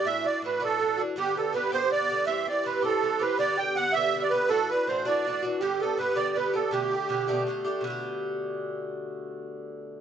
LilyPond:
<<
  \new Staff \with { instrumentName = "Accordion" } { \time 6/8 \key g \major \tempo 4. = 108 e''8 d''8 b'8 a'4 r8 | g'8 a'8 b'8 c''8 d''4 | e''8 d''8 b'8 a'4 b'8 | d''8 g''8 fis''8 e''8. d''16 b'8 |
a'8 b'8 c''8 d''4 r8 | g'8 a'8 b'8 d''8 b'8 a'8 | g'2 r4 | r2. |
r2. | }
  \new Staff \with { instrumentName = "Bouzouki" } { \time 6/8 \key g \major <a, e d' fis'>8 <e d' fis'>8 <a, e d' fis'>8 <a, e d' fis'>8 <a, e d' fis'>8 <e d' fis'>8 | <g, d b g'>8 <d b g'>8 <g, d b g'>8 <g, d b g'>8 <g, d b g'>8 <d b g'>8 | <g, e c' g'>8 <e c' g'>8 <g, e c' g'>8 <g, e c' g'>8 <g, e c' g'>8 <e c' g'>8 | <g, d b g'>8 <d b g'>8 <g, d b g'>8 <g, d b g'>8 <g, d b g'>8 <d b g'>8 |
<a, e d' fis'>8 <e d' fis'>8 <a, e d' fis'>8 <a, e d' fis'>8 <a, e d' fis'>8 <e d' fis'>8 | <g, d b g'>8 <d b g'>8 <g, d b g'>8 <g, d b g'>8 <g, d b g'>8 <d b g'>8 | <b, d a g'>8 <d a g'>8 <b, d a g'>8 <b, d a g'>8 <b, d a g'>8 <d a g'>8 | <b, d a g'>2.~ |
<b, d a g'>2. | }
>>